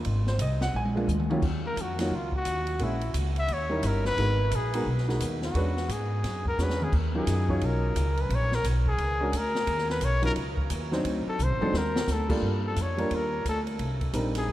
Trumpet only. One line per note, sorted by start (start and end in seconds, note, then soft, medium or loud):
1.66 1.83 A#4 medium
1.81 2.17 F#4 medium
2.15 2.35 F4 medium
2.36 2.85 F#4 medium
2.83 3.16 E4 medium
3.38 3.55 E5 loud
3.53 3.88 C#5 medium
3.87 4.06 A#4 medium
4.06 4.57 B4 loud
4.55 4.88 G#4 medium
5.45 5.93 F#4 medium
5.92 6.47 G#4 medium
6.48 6.64 A#4 medium
6.63 6.85 B4 medium
6.84 6.94 G#4 medium
7.17 7.67 G#4 medium
7.66 8.22 A#4 medium
8.21 8.36 B4 medium
8.35 8.56 C#5 loud
8.55 8.66 A#4 medium
8.88 9.39 G#4 medium
9.37 9.90 A#4 medium
9.91 10.06 B4 medium
10.05 10.25 C#5 medium
10.25 10.32 A#4 loud
11.29 11.45 A4 medium
11.43 11.79 C5 loud
11.78 12.14 A#4 medium
12.12 12.32 A4 medium
12.67 12.83 A4 medium
12.81 13.16 C#5 medium
13.15 13.47 A#4 medium
13.49 13.61 A4 medium
14.38 14.52 G#4 medium